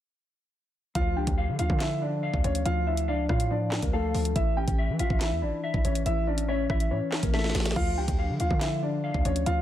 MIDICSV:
0, 0, Header, 1, 5, 480
1, 0, Start_track
1, 0, Key_signature, -1, "minor"
1, 0, Tempo, 425532
1, 1075, Time_signature, 4, 2, 24, 8
1, 10849, End_track
2, 0, Start_track
2, 0, Title_t, "Grand piano"
2, 0, Program_c, 0, 0
2, 1074, Note_on_c, 0, 77, 116
2, 1083, Note_on_c, 0, 65, 89
2, 1296, Note_off_c, 0, 77, 0
2, 1301, Note_off_c, 0, 65, 0
2, 1314, Note_on_c, 0, 79, 73
2, 1324, Note_on_c, 0, 67, 58
2, 1766, Note_off_c, 0, 79, 0
2, 1771, Note_off_c, 0, 67, 0
2, 1794, Note_on_c, 0, 77, 89
2, 1803, Note_on_c, 0, 65, 67
2, 2016, Note_off_c, 0, 77, 0
2, 2021, Note_off_c, 0, 65, 0
2, 2033, Note_on_c, 0, 76, 96
2, 2043, Note_on_c, 0, 64, 74
2, 2256, Note_off_c, 0, 76, 0
2, 2261, Note_off_c, 0, 64, 0
2, 2277, Note_on_c, 0, 74, 75
2, 2286, Note_on_c, 0, 62, 62
2, 2727, Note_off_c, 0, 74, 0
2, 2732, Note_off_c, 0, 62, 0
2, 2756, Note_on_c, 0, 73, 87
2, 2765, Note_on_c, 0, 61, 67
2, 2977, Note_off_c, 0, 73, 0
2, 2982, Note_off_c, 0, 61, 0
2, 2995, Note_on_c, 0, 77, 111
2, 3003, Note_on_c, 0, 65, 79
2, 3216, Note_off_c, 0, 77, 0
2, 3221, Note_off_c, 0, 65, 0
2, 3236, Note_on_c, 0, 76, 88
2, 3245, Note_on_c, 0, 64, 70
2, 3457, Note_off_c, 0, 76, 0
2, 3462, Note_off_c, 0, 64, 0
2, 3476, Note_on_c, 0, 74, 89
2, 3485, Note_on_c, 0, 62, 65
2, 3697, Note_off_c, 0, 74, 0
2, 3702, Note_off_c, 0, 62, 0
2, 3714, Note_on_c, 0, 77, 78
2, 3724, Note_on_c, 0, 65, 69
2, 3936, Note_off_c, 0, 77, 0
2, 3941, Note_off_c, 0, 65, 0
2, 3955, Note_on_c, 0, 74, 85
2, 3964, Note_on_c, 0, 62, 66
2, 4293, Note_off_c, 0, 74, 0
2, 4298, Note_off_c, 0, 62, 0
2, 4316, Note_on_c, 0, 70, 71
2, 4325, Note_on_c, 0, 58, 53
2, 4426, Note_off_c, 0, 70, 0
2, 4431, Note_off_c, 0, 58, 0
2, 4437, Note_on_c, 0, 69, 91
2, 4446, Note_on_c, 0, 57, 72
2, 4887, Note_off_c, 0, 69, 0
2, 4892, Note_off_c, 0, 57, 0
2, 4914, Note_on_c, 0, 76, 106
2, 4923, Note_on_c, 0, 64, 82
2, 5136, Note_off_c, 0, 76, 0
2, 5141, Note_off_c, 0, 64, 0
2, 5154, Note_on_c, 0, 79, 85
2, 5164, Note_on_c, 0, 67, 60
2, 5606, Note_off_c, 0, 79, 0
2, 5611, Note_off_c, 0, 67, 0
2, 5636, Note_on_c, 0, 77, 77
2, 5645, Note_on_c, 0, 65, 67
2, 5857, Note_off_c, 0, 77, 0
2, 5862, Note_off_c, 0, 65, 0
2, 5877, Note_on_c, 0, 76, 90
2, 5886, Note_on_c, 0, 64, 77
2, 6098, Note_off_c, 0, 76, 0
2, 6103, Note_off_c, 0, 64, 0
2, 6114, Note_on_c, 0, 74, 77
2, 6123, Note_on_c, 0, 62, 61
2, 6566, Note_off_c, 0, 74, 0
2, 6571, Note_off_c, 0, 62, 0
2, 6594, Note_on_c, 0, 73, 77
2, 6604, Note_on_c, 0, 61, 59
2, 6816, Note_off_c, 0, 73, 0
2, 6821, Note_off_c, 0, 61, 0
2, 6835, Note_on_c, 0, 76, 110
2, 6844, Note_on_c, 0, 64, 86
2, 7056, Note_off_c, 0, 76, 0
2, 7061, Note_off_c, 0, 64, 0
2, 7076, Note_on_c, 0, 74, 90
2, 7085, Note_on_c, 0, 62, 71
2, 7297, Note_off_c, 0, 74, 0
2, 7302, Note_off_c, 0, 62, 0
2, 7314, Note_on_c, 0, 73, 87
2, 7323, Note_on_c, 0, 61, 67
2, 7536, Note_off_c, 0, 73, 0
2, 7541, Note_off_c, 0, 61, 0
2, 7555, Note_on_c, 0, 76, 80
2, 7564, Note_on_c, 0, 64, 66
2, 7777, Note_off_c, 0, 76, 0
2, 7781, Note_off_c, 0, 64, 0
2, 7794, Note_on_c, 0, 73, 78
2, 7804, Note_on_c, 0, 61, 61
2, 8133, Note_off_c, 0, 73, 0
2, 8138, Note_off_c, 0, 61, 0
2, 8154, Note_on_c, 0, 70, 73
2, 8163, Note_on_c, 0, 58, 55
2, 8265, Note_off_c, 0, 70, 0
2, 8270, Note_off_c, 0, 58, 0
2, 8275, Note_on_c, 0, 69, 92
2, 8283, Note_on_c, 0, 57, 69
2, 8726, Note_off_c, 0, 69, 0
2, 8731, Note_off_c, 0, 57, 0
2, 8755, Note_on_c, 0, 77, 117
2, 8764, Note_on_c, 0, 65, 88
2, 8977, Note_off_c, 0, 77, 0
2, 8981, Note_off_c, 0, 65, 0
2, 8996, Note_on_c, 0, 79, 76
2, 9006, Note_on_c, 0, 67, 59
2, 9447, Note_off_c, 0, 79, 0
2, 9452, Note_off_c, 0, 67, 0
2, 9476, Note_on_c, 0, 77, 88
2, 9484, Note_on_c, 0, 65, 65
2, 9697, Note_off_c, 0, 77, 0
2, 9702, Note_off_c, 0, 65, 0
2, 9715, Note_on_c, 0, 76, 93
2, 9724, Note_on_c, 0, 64, 75
2, 9937, Note_off_c, 0, 76, 0
2, 9941, Note_off_c, 0, 64, 0
2, 9958, Note_on_c, 0, 74, 74
2, 9967, Note_on_c, 0, 62, 63
2, 10408, Note_off_c, 0, 74, 0
2, 10412, Note_off_c, 0, 62, 0
2, 10437, Note_on_c, 0, 73, 88
2, 10446, Note_on_c, 0, 61, 67
2, 10658, Note_off_c, 0, 73, 0
2, 10663, Note_off_c, 0, 61, 0
2, 10675, Note_on_c, 0, 77, 113
2, 10684, Note_on_c, 0, 65, 80
2, 10849, Note_off_c, 0, 65, 0
2, 10849, Note_off_c, 0, 77, 0
2, 10849, End_track
3, 0, Start_track
3, 0, Title_t, "Clean electric guitar"
3, 0, Program_c, 1, 27
3, 1073, Note_on_c, 1, 53, 102
3, 1315, Note_on_c, 1, 62, 87
3, 1553, Note_on_c, 1, 77, 94
3, 1784, Note_off_c, 1, 77, 0
3, 1797, Note_on_c, 1, 77, 80
3, 2021, Note_off_c, 1, 53, 0
3, 2035, Note_on_c, 1, 53, 84
3, 2263, Note_off_c, 1, 62, 0
3, 2277, Note_on_c, 1, 62, 79
3, 2501, Note_off_c, 1, 77, 0
3, 2515, Note_on_c, 1, 77, 92
3, 2741, Note_off_c, 1, 53, 0
3, 2754, Note_on_c, 1, 53, 86
3, 2979, Note_off_c, 1, 53, 0
3, 2993, Note_on_c, 1, 53, 91
3, 3223, Note_off_c, 1, 62, 0
3, 3236, Note_on_c, 1, 62, 86
3, 3461, Note_off_c, 1, 77, 0
3, 3474, Note_on_c, 1, 77, 99
3, 3702, Note_off_c, 1, 77, 0
3, 3716, Note_on_c, 1, 77, 79
3, 3941, Note_off_c, 1, 53, 0
3, 3955, Note_on_c, 1, 53, 93
3, 4179, Note_off_c, 1, 62, 0
3, 4192, Note_on_c, 1, 62, 79
3, 4422, Note_off_c, 1, 77, 0
3, 4436, Note_on_c, 1, 77, 92
3, 4661, Note_off_c, 1, 53, 0
3, 4674, Note_on_c, 1, 53, 84
3, 4910, Note_off_c, 1, 53, 0
3, 4914, Note_off_c, 1, 62, 0
3, 4914, Note_on_c, 1, 52, 98
3, 4915, Note_off_c, 1, 77, 0
3, 5155, Note_on_c, 1, 61, 86
3, 5397, Note_on_c, 1, 76, 95
3, 5622, Note_off_c, 1, 76, 0
3, 5636, Note_on_c, 1, 76, 88
3, 5863, Note_off_c, 1, 52, 0
3, 5876, Note_on_c, 1, 52, 92
3, 6115, Note_on_c, 1, 64, 79
3, 6343, Note_off_c, 1, 76, 0
3, 6355, Note_off_c, 1, 61, 0
3, 6357, Note_on_c, 1, 76, 102
3, 6581, Note_off_c, 1, 52, 0
3, 6594, Note_on_c, 1, 52, 75
3, 6824, Note_off_c, 1, 52, 0
3, 6837, Note_on_c, 1, 52, 97
3, 7076, Note_on_c, 1, 61, 91
3, 7302, Note_off_c, 1, 76, 0
3, 7315, Note_off_c, 1, 64, 0
3, 7315, Note_on_c, 1, 76, 92
3, 7542, Note_off_c, 1, 76, 0
3, 7556, Note_on_c, 1, 76, 87
3, 7779, Note_off_c, 1, 52, 0
3, 7793, Note_on_c, 1, 52, 91
3, 8021, Note_off_c, 1, 61, 0
3, 8035, Note_on_c, 1, 61, 84
3, 8260, Note_off_c, 1, 76, 0
3, 8273, Note_on_c, 1, 76, 91
3, 8503, Note_off_c, 1, 52, 0
3, 8516, Note_on_c, 1, 52, 80
3, 8749, Note_off_c, 1, 52, 0
3, 8754, Note_off_c, 1, 76, 0
3, 8754, Note_on_c, 1, 53, 97
3, 8755, Note_off_c, 1, 61, 0
3, 8995, Note_on_c, 1, 62, 84
3, 9233, Note_on_c, 1, 77, 93
3, 9464, Note_off_c, 1, 77, 0
3, 9477, Note_on_c, 1, 77, 80
3, 9702, Note_off_c, 1, 53, 0
3, 9716, Note_on_c, 1, 53, 86
3, 9942, Note_off_c, 1, 62, 0
3, 9956, Note_on_c, 1, 62, 81
3, 10181, Note_off_c, 1, 77, 0
3, 10195, Note_on_c, 1, 77, 93
3, 10423, Note_off_c, 1, 53, 0
3, 10436, Note_on_c, 1, 53, 86
3, 10660, Note_off_c, 1, 53, 0
3, 10674, Note_on_c, 1, 53, 94
3, 10849, Note_off_c, 1, 53, 0
3, 10849, Note_off_c, 1, 62, 0
3, 10849, Note_off_c, 1, 77, 0
3, 10849, End_track
4, 0, Start_track
4, 0, Title_t, "808-style bass"
4, 0, Program_c, 2, 38
4, 1075, Note_on_c, 2, 38, 109
4, 1315, Note_on_c, 2, 37, 98
4, 1332, Note_off_c, 2, 38, 0
4, 1429, Note_off_c, 2, 37, 0
4, 1434, Note_on_c, 2, 38, 110
4, 1675, Note_on_c, 2, 50, 101
4, 1692, Note_off_c, 2, 38, 0
4, 1789, Note_off_c, 2, 50, 0
4, 1795, Note_on_c, 2, 38, 102
4, 1907, Note_off_c, 2, 38, 0
4, 1914, Note_on_c, 2, 50, 105
4, 2606, Note_off_c, 2, 50, 0
4, 2635, Note_on_c, 2, 38, 107
4, 2750, Note_off_c, 2, 38, 0
4, 2755, Note_on_c, 2, 38, 105
4, 2986, Note_off_c, 2, 38, 0
4, 2996, Note_on_c, 2, 38, 110
4, 3475, Note_on_c, 2, 37, 103
4, 3492, Note_off_c, 2, 38, 0
4, 3703, Note_off_c, 2, 37, 0
4, 3715, Note_on_c, 2, 45, 103
4, 4291, Note_off_c, 2, 45, 0
4, 4315, Note_on_c, 2, 38, 101
4, 4661, Note_off_c, 2, 38, 0
4, 4675, Note_on_c, 2, 38, 101
4, 4906, Note_off_c, 2, 38, 0
4, 4915, Note_on_c, 2, 33, 109
4, 5261, Note_off_c, 2, 33, 0
4, 5275, Note_on_c, 2, 33, 107
4, 5515, Note_on_c, 2, 52, 104
4, 5532, Note_off_c, 2, 33, 0
4, 5629, Note_off_c, 2, 52, 0
4, 5635, Note_on_c, 2, 33, 103
4, 5748, Note_off_c, 2, 33, 0
4, 5755, Note_on_c, 2, 33, 106
4, 5995, Note_on_c, 2, 40, 103
4, 6012, Note_off_c, 2, 33, 0
4, 6115, Note_on_c, 2, 33, 104
4, 6132, Note_off_c, 2, 40, 0
4, 6229, Note_off_c, 2, 33, 0
4, 6475, Note_on_c, 2, 33, 102
4, 6588, Note_off_c, 2, 33, 0
4, 6595, Note_on_c, 2, 33, 102
4, 6825, Note_off_c, 2, 33, 0
4, 6835, Note_on_c, 2, 33, 110
4, 7526, Note_off_c, 2, 33, 0
4, 7555, Note_on_c, 2, 33, 104
4, 7795, Note_on_c, 2, 45, 96
4, 7812, Note_off_c, 2, 33, 0
4, 7909, Note_off_c, 2, 45, 0
4, 8155, Note_on_c, 2, 33, 105
4, 8500, Note_off_c, 2, 33, 0
4, 8515, Note_on_c, 2, 33, 103
4, 8745, Note_off_c, 2, 33, 0
4, 8755, Note_on_c, 2, 38, 109
4, 8995, Note_on_c, 2, 37, 101
4, 9012, Note_off_c, 2, 38, 0
4, 9109, Note_off_c, 2, 37, 0
4, 9115, Note_on_c, 2, 38, 107
4, 9355, Note_on_c, 2, 50, 102
4, 9372, Note_off_c, 2, 38, 0
4, 9469, Note_off_c, 2, 50, 0
4, 9476, Note_on_c, 2, 38, 106
4, 9588, Note_off_c, 2, 38, 0
4, 9595, Note_on_c, 2, 50, 100
4, 10286, Note_off_c, 2, 50, 0
4, 10315, Note_on_c, 2, 38, 101
4, 10430, Note_off_c, 2, 38, 0
4, 10436, Note_on_c, 2, 38, 103
4, 10666, Note_off_c, 2, 38, 0
4, 10676, Note_on_c, 2, 38, 111
4, 10849, Note_off_c, 2, 38, 0
4, 10849, End_track
5, 0, Start_track
5, 0, Title_t, "Drums"
5, 1074, Note_on_c, 9, 42, 76
5, 1075, Note_on_c, 9, 36, 119
5, 1187, Note_off_c, 9, 42, 0
5, 1188, Note_off_c, 9, 36, 0
5, 1434, Note_on_c, 9, 36, 95
5, 1434, Note_on_c, 9, 42, 77
5, 1546, Note_off_c, 9, 42, 0
5, 1547, Note_off_c, 9, 36, 0
5, 1793, Note_on_c, 9, 42, 68
5, 1905, Note_off_c, 9, 42, 0
5, 1914, Note_on_c, 9, 36, 93
5, 2027, Note_off_c, 9, 36, 0
5, 2034, Note_on_c, 9, 38, 113
5, 2035, Note_on_c, 9, 39, 91
5, 2036, Note_on_c, 9, 42, 92
5, 2147, Note_off_c, 9, 38, 0
5, 2148, Note_off_c, 9, 39, 0
5, 2149, Note_off_c, 9, 42, 0
5, 2635, Note_on_c, 9, 36, 94
5, 2748, Note_off_c, 9, 36, 0
5, 2756, Note_on_c, 9, 42, 76
5, 2869, Note_off_c, 9, 42, 0
5, 2876, Note_on_c, 9, 42, 83
5, 2989, Note_off_c, 9, 42, 0
5, 2995, Note_on_c, 9, 42, 73
5, 3108, Note_off_c, 9, 42, 0
5, 3355, Note_on_c, 9, 42, 76
5, 3468, Note_off_c, 9, 42, 0
5, 3715, Note_on_c, 9, 36, 96
5, 3715, Note_on_c, 9, 37, 102
5, 3828, Note_off_c, 9, 36, 0
5, 3828, Note_off_c, 9, 37, 0
5, 3833, Note_on_c, 9, 42, 77
5, 3946, Note_off_c, 9, 42, 0
5, 4195, Note_on_c, 9, 38, 119
5, 4196, Note_on_c, 9, 39, 94
5, 4308, Note_off_c, 9, 38, 0
5, 4309, Note_off_c, 9, 39, 0
5, 4315, Note_on_c, 9, 36, 88
5, 4315, Note_on_c, 9, 42, 84
5, 4428, Note_off_c, 9, 36, 0
5, 4428, Note_off_c, 9, 42, 0
5, 4676, Note_on_c, 9, 46, 56
5, 4788, Note_off_c, 9, 46, 0
5, 4796, Note_on_c, 9, 42, 77
5, 4909, Note_off_c, 9, 42, 0
5, 4915, Note_on_c, 9, 36, 119
5, 4915, Note_on_c, 9, 42, 76
5, 5027, Note_off_c, 9, 42, 0
5, 5028, Note_off_c, 9, 36, 0
5, 5275, Note_on_c, 9, 36, 97
5, 5275, Note_on_c, 9, 42, 76
5, 5387, Note_off_c, 9, 42, 0
5, 5388, Note_off_c, 9, 36, 0
5, 5633, Note_on_c, 9, 42, 69
5, 5746, Note_off_c, 9, 42, 0
5, 5755, Note_on_c, 9, 36, 91
5, 5868, Note_off_c, 9, 36, 0
5, 5874, Note_on_c, 9, 38, 115
5, 5874, Note_on_c, 9, 39, 88
5, 5875, Note_on_c, 9, 42, 95
5, 5986, Note_off_c, 9, 38, 0
5, 5987, Note_off_c, 9, 39, 0
5, 5988, Note_off_c, 9, 42, 0
5, 6475, Note_on_c, 9, 36, 95
5, 6588, Note_off_c, 9, 36, 0
5, 6595, Note_on_c, 9, 42, 76
5, 6708, Note_off_c, 9, 42, 0
5, 6716, Note_on_c, 9, 42, 82
5, 6829, Note_off_c, 9, 42, 0
5, 6835, Note_on_c, 9, 42, 74
5, 6947, Note_off_c, 9, 42, 0
5, 7194, Note_on_c, 9, 42, 76
5, 7307, Note_off_c, 9, 42, 0
5, 7555, Note_on_c, 9, 36, 95
5, 7555, Note_on_c, 9, 37, 98
5, 7667, Note_off_c, 9, 36, 0
5, 7668, Note_off_c, 9, 37, 0
5, 7673, Note_on_c, 9, 42, 77
5, 7786, Note_off_c, 9, 42, 0
5, 8035, Note_on_c, 9, 38, 122
5, 8036, Note_on_c, 9, 39, 93
5, 8148, Note_off_c, 9, 38, 0
5, 8149, Note_off_c, 9, 39, 0
5, 8154, Note_on_c, 9, 42, 83
5, 8155, Note_on_c, 9, 36, 85
5, 8267, Note_off_c, 9, 36, 0
5, 8267, Note_off_c, 9, 42, 0
5, 8275, Note_on_c, 9, 38, 61
5, 8335, Note_off_c, 9, 38, 0
5, 8335, Note_on_c, 9, 38, 60
5, 8395, Note_off_c, 9, 38, 0
5, 8395, Note_on_c, 9, 38, 78
5, 8454, Note_off_c, 9, 38, 0
5, 8454, Note_on_c, 9, 38, 71
5, 8514, Note_off_c, 9, 38, 0
5, 8514, Note_on_c, 9, 38, 92
5, 8515, Note_on_c, 9, 42, 77
5, 8575, Note_off_c, 9, 38, 0
5, 8575, Note_on_c, 9, 38, 85
5, 8628, Note_off_c, 9, 42, 0
5, 8635, Note_off_c, 9, 38, 0
5, 8635, Note_on_c, 9, 38, 113
5, 8635, Note_on_c, 9, 42, 76
5, 8695, Note_off_c, 9, 38, 0
5, 8695, Note_on_c, 9, 38, 96
5, 8748, Note_off_c, 9, 42, 0
5, 8755, Note_on_c, 9, 36, 116
5, 8755, Note_on_c, 9, 49, 81
5, 8807, Note_off_c, 9, 38, 0
5, 8867, Note_off_c, 9, 49, 0
5, 8868, Note_off_c, 9, 36, 0
5, 9114, Note_on_c, 9, 42, 75
5, 9115, Note_on_c, 9, 36, 96
5, 9227, Note_off_c, 9, 36, 0
5, 9227, Note_off_c, 9, 42, 0
5, 9473, Note_on_c, 9, 42, 69
5, 9586, Note_off_c, 9, 42, 0
5, 9595, Note_on_c, 9, 36, 96
5, 9707, Note_off_c, 9, 36, 0
5, 9714, Note_on_c, 9, 38, 111
5, 9715, Note_on_c, 9, 39, 89
5, 9716, Note_on_c, 9, 42, 96
5, 9827, Note_off_c, 9, 38, 0
5, 9827, Note_off_c, 9, 39, 0
5, 9829, Note_off_c, 9, 42, 0
5, 10315, Note_on_c, 9, 36, 93
5, 10428, Note_off_c, 9, 36, 0
5, 10435, Note_on_c, 9, 42, 77
5, 10548, Note_off_c, 9, 42, 0
5, 10556, Note_on_c, 9, 42, 80
5, 10669, Note_off_c, 9, 42, 0
5, 10675, Note_on_c, 9, 42, 77
5, 10788, Note_off_c, 9, 42, 0
5, 10849, End_track
0, 0, End_of_file